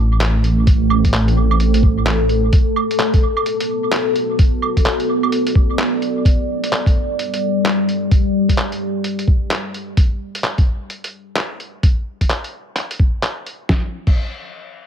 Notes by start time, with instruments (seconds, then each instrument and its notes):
Already playing: detuned saw bass A1, ambient pad A3 D4 A4 D5 A5
0.00 ambient pad C5
0.21 ambient pad G5, clap, closed hi-hat
0.44 closed hi-hat
0.67 kick, closed hi-hat
0.90 claves
1.05 kick, closed hi-hat
1.13 clap, closed hi-hat
1.28 closed hi-hat
1.51 claves
1.60 closed hi-hat
1.74 closed hi-hat
1.83 kick
2.06 clap, closed hi-hat
2.29 closed hi-hat
2.53 ambient pad B3, kick, closed hi-hat
2.66 ambient pad F#4
2.76 claves
2.91 closed hi-hat
2.99 clap, closed hi-hat
3.14 kick, closed hi-hat
3.37 claves
3.46 closed hi-hat
3.60 closed hi-hat
3.92 clap, closed hi-hat
4.16 ambient pad D5, closed hi-hat
4.39 kick, closed hi-hat
4.62 claves
4.77 kick, closed hi-hat
4.86 clap, closed hi-hat
5.00 closed hi-hat
5.23 claves
5.32 closed hi-hat
5.47 closed hi-hat
5.55 kick
5.79 clap, closed hi-hat
6.02 closed hi-hat
6.25 ambient pad G3, kick, closed hi-hat
6.64 closed hi-hat
6.73 clap, closed hi-hat
6.80 ambient pad G4
6.86 kick, closed hi-hat
7.19 closed hi-hat
7.34 closed hi-hat
7.66 clap, closed hi-hat
7.89 closed hi-hat
8.11 kick, closed hi-hat
8.49 kick, closed hi-hat
8.58 clap, closed hi-hat
8.72 closed hi-hat
9.04 closed hi-hat
9.19 closed hi-hat
9.28 kick
9.51 clap, closed hi-hat
9.74 closed hi-hat
9.97 kick, closed hi-hat
10.35 closed hi-hat
10.44 clap, closed hi-hat
10.58 kick, closed hi-hat
10.90 closed hi-hat
11.04 closed hi-hat
11.36 clap, closed hi-hat
11.60 closed hi-hat
11.83 kick, closed hi-hat
12.21 kick, closed hi-hat
12.30 clap, closed hi-hat
12.44 closed hi-hat
12.76 clap, closed hi-hat
12.91 closed hi-hat
13.00 kick
13.23 clap, closed hi-hat
13.46 closed hi-hat
13.69 kick, snare
14.07 kick, crash